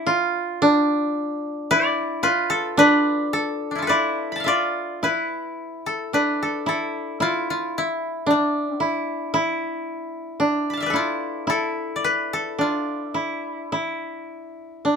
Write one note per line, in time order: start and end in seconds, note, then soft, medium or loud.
0.00 0.61 D4 medium
0.00 0.12 E4 medium
0.06 1.77 F4 medium
0.62 2.77 D4 medium
1.71 2.29 E4 medium
1.71 3.31 D5 medium
2.23 3.96 F4 medium
2.23 2.78 B4 medium
2.50 3.33 A4 medium
2.77 5.20 D4 medium
2.77 3.87 B4 medium
3.33 3.82 A4 medium
3.71 6.14 D4 soft
3.75 4.46 E4 soft
3.75 4.50 F4 soft
3.82 5.73 A4 soft
3.87 4.52 E4 medium
3.87 5.03 B4 soft
3.87 4.47 D5 medium
4.32 5.61 A5 soft
4.32 5.49 B5 soft
4.40 5.93 E5 soft
4.40 5.84 F5 soft
4.46 5.09 F4 medium
4.46 6.08 D5 medium
5.03 6.66 E4 medium
5.03 6.14 B4 medium
5.86 6.42 A4 medium
6.13 8.26 D4 medium
6.13 7.92 B4 medium
6.43 6.68 A4 medium
6.66 7.20 E4 medium
6.66 8.59 A4 medium
7.20 8.80 E4 medium
7.20 7.50 F4 medium
7.50 7.84 F4 medium
7.78 10.04 E4 medium
8.26 10.39 D4 medium
8.31 8.80 D4 medium
8.80 10.73 B3 medium
8.80 9.33 E4 medium
9.34 10.93 E4 medium
10.40 12.58 D4 medium
10.70 11.99 A5 soft
10.70 11.87 B5 soft
10.77 11.02 E5 soft
10.77 12.22 F5 soft
10.82 12.04 B4 soft
10.82 11.95 D5 soft
10.90 11.47 E4 medium
10.90 11.49 A4 soft
10.96 12.61 F4 medium
11.47 13.14 E4 medium
11.47 12.33 A4 medium
11.96 13.56 D5 soft
12.04 13.82 B4 medium
12.33 14.24 A4 medium
12.58 14.84 D4 medium
12.58 13.08 F4 soft
13.08 14.80 E4 soft
13.14 13.72 E4 soft
13.72 14.96 E4 medium
14.85 14.96 D4 medium